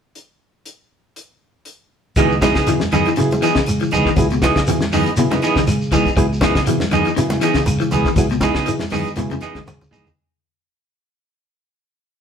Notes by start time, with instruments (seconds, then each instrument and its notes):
0.15 closed hi-hat
0.66 closed hi-hat
1.16 closed hi-hat
1.65 closed hi-hat
2.16 fingered electric bass C#2, clean electric guitar D#3 E3 B3 D#4 G#4, reed electric piano F#3 B3 E4 G#4, kick, closed hi-hat, high conga, claves, shekere
2.31 shekere
2.41 clean electric guitar C#3 E3 B3 D#4 G#4, reed electric piano F#3 B3 E4 G#4, kick, snare, closed hi-hat, high conga, shekere
2.55 fingered electric bass C#3, clean electric guitar B3 D#4 G#4, kick, snare, closed hi-hat, claves, shekere
2.67 clean electric guitar E3, reed electric piano F#3 B3 E4 G#4, snare, closed hi-hat, high conga, low conga, shekere
2.80 snare, high conga, shekere
2.92 fingered electric bass F#2, clean electric guitar D#3 E3 B3 D#4 G#4, closed hi-hat, low conga, claves, shekere
3.05 clean electric guitar E3, muted fingered electric bass stroke, closed hi-hat, shekere
3.16 clean electric guitar C#3, fingered electric bass C#3, reed electric piano F#3 B3 E4 G#4, closed hi-hat, high conga, shekere
3.31 closed hi-hat, high conga, shekere
3.42 clean electric guitar E3 B3 D#4 G#4, closed hi-hat, claves, shekere
3.55 fingered electric bass C#3, clean electric guitar C#3, kick, snare, closed hi-hat, shekere
3.66 closed hi-hat, high conga, claves, shekere
3.80 clean electric guitar E3, closed hi-hat, shekere
3.91 fingered electric bass C#2, clean electric guitar E3 B3 D#4 G#4, closed hi-hat, low conga, shekere
4.06 clean electric guitar D#3, kick, snare, shekere
4.16 fingered electric bass C#2, reed electric piano F#3 B3 E4 G#4, kick, closed hi-hat, claves, shekere
4.30 clean electric guitar B2, closed hi-hat, shekere
4.42 clean electric guitar E3 B3 D#4 G#4, reed electric piano F#3 B3 E4 G#4, kick, snare, closed hi-hat, high conga, shekere
4.56 fingered electric bass C#3, kick, snare, closed hi-hat, claves, shekere
4.67 clean electric guitar E3, reed electric piano F#3 B3 E4 G#4, closed hi-hat, high conga, low conga, shekere
4.81 snare, closed hi-hat, high conga, shekere
4.92 fingered electric bass F#2, clean electric guitar D#3 E3 B3 D#4 G#4, open hi-hat, low conga, claves, shekere
5.06 muted fingered electric bass stroke, closed hi-hat, shekere
5.17 clean electric guitar B2, fingered electric bass C#3, reed electric piano F#3 B3 E4 G#4, closed hi-hat, shekere
5.31 clean electric guitar C#3 B3 D#4, muted clean electric guitar stroke, snare, closed hi-hat, high conga, shekere
5.42 clean electric guitar E3 B3 D#4 G#4, snare, closed hi-hat, claves, shekere
5.56 fingered electric bass C#3, clean electric guitar D#3, kick, snare, closed hi-hat, shekere
5.67 snare, closed hi-hat, high conga, claves, shekere
5.81 shekere
5.91 fingered electric bass C#2, clean electric guitar E3 B3 D#4 G#4, kick, closed hi-hat, low conga, shekere
6.06 kick, closed hi-hat, shekere
6.16 fingered electric bass C#2, reed electric piano F#3 B3 E4 G#4, muted clean electric guitar stroke, kick, closed hi-hat, claves, shekere
6.33 shekere
6.41 clean electric guitar C#3 E3 B3 D#4 G#4, reed electric piano F#3 B3 E4 G#4, kick, snare, closed hi-hat, high conga, shekere
6.55 fingered electric bass C#3, kick, snare, closed hi-hat, claves, shekere
6.66 clean electric guitar E3, reed electric piano F#3 B3 E4 G#4, closed hi-hat, high conga, shekere
6.80 snare, high conga, shekere
6.91 fingered electric bass F#2, clean electric guitar D#3 E3 B3 D#4 G#4, closed hi-hat, low conga, claves, shekere
7.05 clean electric guitar E3, muted fingered electric bass stroke, closed hi-hat, shekere
7.16 clean electric guitar C#3, fingered electric bass C#3, reed electric piano F#3 B3 E4 G#4, snare, closed hi-hat, high conga, shekere
7.30 snare, closed hi-hat, high conga, shekere
7.41 clean electric guitar E3 B3 D#4 G#4, snare, closed hi-hat, claves, shekere
7.54 fingered electric bass C#3, clean electric guitar C#3, kick, snare, closed hi-hat, shekere
7.66 closed hi-hat, high conga, low conga, claves, shekere
7.80 clean electric guitar E3, closed hi-hat, shekere
7.91 fingered electric bass C#2, clean electric guitar E3 B3 G#4, muted clean electric guitar stroke, closed hi-hat, low conga, shekere
8.05 clean electric guitar D#3, kick, snare, shekere
8.16 fingered electric bass C#2, reed electric piano F#3 B3 E4 G#4, kick, closed hi-hat, high conga, claves, shekere
8.29 clean electric guitar B2, closed hi-hat, shekere
8.41 clean electric guitar E3 B3 D#4 G#4, reed electric piano F#3 B3 E4 G#4, kick, snare, closed hi-hat, high conga, shekere
8.55 fingered electric bass C#3, clean electric guitar B3 D#4 G#4, kick, snare, closed hi-hat, claves, shekere
8.66 clean electric guitar E3, reed electric piano F#3 B3 E4 G#4, closed hi-hat, high conga, shekere
8.80 snare, closed hi-hat, high conga, shekere
8.90 fingered electric bass F#2, clean electric guitar D#3 E3 B3 D#4 G#4, open hi-hat, high conga, low conga, claves, shekere
9.05 muted fingered electric bass stroke, closed hi-hat, shekere
9.16 clean electric guitar B2, fingered electric bass C#3, reed electric piano F#3 B3 E4 G#4, snare, closed hi-hat, high conga, shekere
9.30 clean electric guitar C#3, closed hi-hat, high conga, shekere
9.41 clean electric guitar E3 B3 D#4 G#4, snare, closed hi-hat, high conga, claves, shekere
9.55 fingered electric bass C#3, clean electric guitar D#3, kick, snare, closed hi-hat, high conga, shekere
9.66 snare, low conga, claves, shekere
9.81 low conga, shekere
9.91 fingered electric bass C#2, clean electric guitar E3 B3 D#4 G#4, mid tom, shekere
10.05 floor tom, low conga, shekere